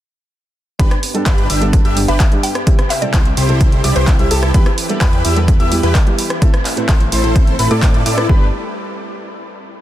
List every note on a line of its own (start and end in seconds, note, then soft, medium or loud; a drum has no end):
0.79 0.90 G1 loud
0.79 0.89 G2 medium
0.79 0.89 G3 medium
0.79 0.89 B3 medium
0.79 2.65 B3 medium
0.79 0.92 D4 medium
0.79 2.65 D4 medium
0.79 0.89 D4 medium
0.79 0.92 G4 medium
0.79 4.51 G4 medium
0.79 0.89 G4 medium
0.79 0.92 B4 loud
0.79 0.92 B5 loud
0.79 kick loud
0.79 closed hi-hat loud
0.91 cross-stick medium
0.91 closed hi-hat soft
1.03 open hi-hat loud
1.14 1.24 G2 medium
1.14 1.24 G3 medium
1.14 1.24 B3 medium
1.14 1.24 D4 medium
1.14 1.25 A4 loud
1.14 closed hi-hat soft
1.26 1.47 G1 loud
1.26 1.47 D4 loud
1.26 1.47 G4 medium
1.26 1.47 B4 loud
1.26 1.47 B5 loud
1.26 kick loud
1.26 clap loud
1.26 closed hi-hat loud
1.38 closed hi-hat soft
1.50 1.83 G1 medium
1.50 1.63 D4 medium
1.50 1.63 G4 medium
1.50 1.63 E5 medium
1.50 1.63 E6 medium
1.50 open hi-hat loud
1.61 1.94 G2 medium
1.61 1.94 G3 medium
1.61 1.94 B3 medium
1.61 1.94 D4 medium
1.61 1.94 A4 loud
1.61 closed hi-hat soft
1.73 kick loud
1.73 closed hi-hat loud
1.85 2.06 G1 loud
1.85 1.98 D4 medium
1.85 1.98 G4 medium
1.85 1.98 E5 loud
1.85 1.98 E6 loud
1.85 closed hi-hat soft
1.96 2.29 G2 medium
1.96 2.29 G3 medium
1.96 2.29 B3 medium
1.96 2.29 D4 medium
1.96 2.29 G4 medium
1.96 open hi-hat loud
2.08 2.19 G1 loud
2.08 2.21 D4 medium
2.08 2.21 G4 medium
2.08 2.21 B4 loud
2.08 2.16 E5 medium
2.08 2.21 B5 medium
2.08 closed hi-hat soft
2.20 2.28 E5 medium
2.20 kick loud
2.20 clap loud
2.20 closed hi-hat loud
2.31 2.47 G2 medium
2.31 2.47 G3 medium
2.31 2.47 B3 medium
2.31 2.47 D4 medium
2.31 2.48 G4 loud
2.31 closed hi-hat soft
2.43 2.61 G5 medium
2.43 open hi-hat loud
2.55 cross-stick medium
2.55 closed hi-hat soft
2.66 2.76 C3 medium
2.66 4.53 C3 medium
2.66 2.76 G3 medium
2.66 4.53 C4 medium
2.66 2.77 C4 medium
2.66 4.53 E4 medium
2.66 2.77 E4 medium
2.66 2.77 G4 loud
2.66 kick loud
2.66 closed hi-hat medium
2.79 cross-stick medium
2.79 closed hi-hat soft
2.90 3.00 E5 loud
2.90 clap soft
2.90 open hi-hat loud
3.02 3.11 C3 medium
3.02 3.12 G3 medium
3.02 3.12 C4 medium
3.02 3.12 E4 medium
3.02 3.12 A4 loud
3.02 3.19 D5 loud
3.02 closed hi-hat soft
3.14 3.35 C2 loud
3.14 3.27 E4 medium
3.14 3.27 G4 medium
3.14 3.27 C5 medium
3.14 3.27 C6 loud
3.14 kick loud
3.14 clap loud
3.14 closed hi-hat medium
3.25 closed hi-hat soft
3.37 3.82 C2 medium
3.37 3.81 E4 medium
3.37 3.81 G4 medium
3.37 3.81 C5 medium
3.37 3.81 C6 medium
3.37 open hi-hat loud
3.48 3.81 C3 medium
3.48 3.81 G3 medium
3.48 3.81 C4 medium
3.48 3.81 E4 medium
3.48 3.82 A4 loud
3.48 closed hi-hat soft
3.61 kick loud
3.61 closed hi-hat loud
3.72 closed hi-hat soft
3.84 3.94 C2 loud
3.84 4.16 C3 medium
3.84 4.16 G3 medium
3.84 4.16 C4 medium
3.84 3.94 E4 medium
3.84 4.17 E4 medium
3.84 3.94 G4 medium
3.84 4.17 G4 loud
3.84 3.94 D5 medium
3.84 3.94 D6 medium
3.84 open hi-hat loud
3.96 4.17 C2 loud
3.96 4.16 E4 loud
3.96 4.16 G4 medium
3.96 4.29 B4 medium
3.96 4.16 C5 loud
3.96 4.16 C6 loud
3.96 closed hi-hat soft
4.07 kick loud
4.07 clap loud
4.07 closed hi-hat medium
4.19 4.29 C2 loud
4.19 4.34 C3 medium
4.19 4.35 G3 medium
4.19 4.35 C4 medium
4.19 4.28 E4 medium
4.19 4.35 E4 medium
4.19 4.28 G4 medium
4.19 4.35 G4 loud
4.19 4.28 E5 loud
4.19 4.28 E6 loud
4.19 closed hi-hat soft
4.31 4.52 C2 loud
4.31 4.51 E4 medium
4.31 4.51 G4 medium
4.31 4.59 A4 medium
4.31 4.51 A4 medium
4.31 4.51 A5 medium
4.31 open hi-hat loud
4.43 cross-stick medium
4.43 closed hi-hat soft
4.54 4.65 E2 loud
4.54 6.40 E3 medium
4.54 4.64 G3 medium
4.54 4.64 B3 medium
4.54 8.26 E4 medium
4.54 4.67 E4 medium
4.54 4.64 E4 medium
4.54 6.40 G4 medium
4.54 4.67 G4 medium
4.54 4.64 G4 loud
4.54 6.40 B4 medium
4.54 4.67 B4 loud
4.54 4.67 B5 loud
4.54 kick loud
4.54 closed hi-hat medium
4.66 cross-stick medium
4.66 closed hi-hat soft
4.78 open hi-hat loud
4.89 4.99 G3 medium
4.89 4.99 B3 medium
4.89 4.99 E4 medium
4.89 5.00 A4 medium
4.89 closed hi-hat soft
5.01 5.22 E2 loud
5.01 5.22 E4 loud
5.01 5.22 G4 medium
5.01 5.22 B4 loud
5.01 5.22 B5 loud
5.01 kick loud
5.01 clap loud
5.01 closed hi-hat medium
5.13 closed hi-hat soft
5.25 5.58 E2 medium
5.25 5.38 E4 medium
5.25 5.38 G4 medium
5.25 5.38 E5 medium
5.25 5.38 E6 medium
5.25 open hi-hat loud
5.36 5.69 G3 medium
5.36 5.69 B3 medium
5.36 5.69 E4 medium
5.36 5.69 A4 loud
5.36 closed hi-hat soft
5.48 kick loud
5.48 closed hi-hat medium
5.60 5.81 E2 loud
5.60 5.73 E4 medium
5.60 5.73 G4 medium
5.60 5.73 E5 loud
5.60 5.73 E6 loud
5.60 closed hi-hat soft
5.71 6.04 G3 medium
5.71 6.04 B3 medium
5.71 6.04 E4 medium
5.71 6.04 G4 medium
5.71 open hi-hat loud
5.83 5.94 E2 loud
5.83 5.96 E4 medium
5.83 5.96 G4 medium
5.83 5.96 B4 loud
5.83 5.96 B5 medium
5.83 closed hi-hat soft
5.95 kick loud
5.95 clap loud
5.95 closed hi-hat medium
6.06 6.22 G3 medium
6.06 6.22 B3 medium
6.06 6.22 E4 medium
6.06 6.23 G4 loud
6.06 closed hi-hat soft
6.19 open hi-hat loud
6.30 cross-stick medium
6.30 closed hi-hat soft
6.41 6.51 A2 medium
6.41 6.51 A3 medium
6.41 8.28 A3 medium
6.41 8.28 C4 medium
6.41 6.52 C4 medium
6.41 6.52 E4 medium
6.41 6.52 A4 loud
6.41 kick loud
6.41 closed hi-hat medium
6.54 cross-stick medium
6.54 closed hi-hat soft
6.65 clap soft
6.65 open hi-hat loud
6.77 6.86 A2 medium
6.77 6.87 A3 medium
6.77 6.87 C4 medium
6.77 6.87 E4 medium
6.77 6.87 B4 loud
6.77 closed hi-hat soft
6.89 7.10 A1 loud
6.89 7.02 E4 medium
6.89 7.02 A4 medium
6.89 7.02 C5 medium
6.89 7.02 C6 medium
6.89 kick loud
6.89 clap loud
6.89 closed hi-hat medium
7.01 closed hi-hat soft
7.12 7.57 A1 loud
7.12 7.56 E4 medium
7.12 7.56 A4 medium
7.12 7.56 C5 medium
7.12 7.56 C6 medium
7.12 open hi-hat loud
7.23 7.56 A2 medium
7.23 7.56 A3 medium
7.23 7.56 C4 medium
7.23 7.56 E4 medium
7.23 closed hi-hat soft
7.36 kick loud
7.36 closed hi-hat medium
7.47 closed hi-hat soft
7.59 7.69 A1 loud
7.59 7.68 E4 medium
7.59 7.68 A4 medium
7.59 7.68 B4 loud
7.59 7.68 B5 loud
7.59 open hi-hat loud
7.70 7.81 A2 medium
7.70 8.04 A2 loud
7.70 7.81 A3 medium
7.70 7.81 C4 medium
7.70 8.03 E4 loud
7.70 7.81 E4 medium
7.70 8.03 A4 medium
7.70 7.81 A4 loud
7.70 8.03 D5 loud
7.70 8.03 D6 loud
7.70 closed hi-hat soft
7.82 8.15 A2 medium
7.82 8.15 A3 medium
7.82 8.15 C4 medium
7.82 8.15 E4 medium
7.82 kick loud
7.82 clap loud
7.82 closed hi-hat medium
7.94 closed hi-hat soft
8.06 8.27 A2 loud
8.06 8.27 E4 medium
8.06 8.27 A4 medium
8.06 8.27 D5 medium
8.06 8.27 D6 medium
8.06 open hi-hat loud
8.17 8.27 A3 medium
8.17 8.27 C4 medium
8.17 8.28 E4 medium
8.17 8.28 B4 loud
8.17 cross-stick medium
8.17 closed hi-hat soft
8.28 8.51 G1 loud
8.28 8.46 G3 medium
8.28 8.51 G3 medium
8.28 8.47 B3 medium
8.28 8.47 D4 medium
8.28 8.47 G4 medium
8.28 8.51 G4 medium
8.28 8.48 G4 loud
8.28 8.51 B4 medium
8.28 8.47 B4 medium
8.28 8.51 D5 medium
8.28 8.47 B5 medium
8.28 kick loud